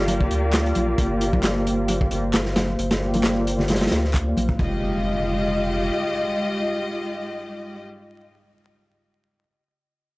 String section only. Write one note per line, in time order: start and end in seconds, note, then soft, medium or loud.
0.00 2.09 A#3 medium
0.00 2.09 F4 medium
0.00 2.09 G4 medium
0.00 2.09 D5 loud
2.11 2.17 A#3 medium
2.11 2.17 F4 medium
2.11 2.17 G4 medium
2.11 2.17 D5 loud
3.02 3.90 A#3 medium
3.02 3.90 F4 medium
3.02 3.90 G4 medium
3.02 3.90 D5 loud
3.92 3.98 A#3 medium
3.92 3.98 F4 medium
3.92 3.98 G4 medium
3.92 3.98 D5 medium
4.27 4.32 A#3 medium
4.27 4.32 F4 medium
4.27 4.32 G4 medium
4.27 4.32 D5 medium
4.59 7.84 G#3 medium
4.59 7.84 F4 medium
4.59 7.84 G4 medium
4.59 7.84 D#5 loud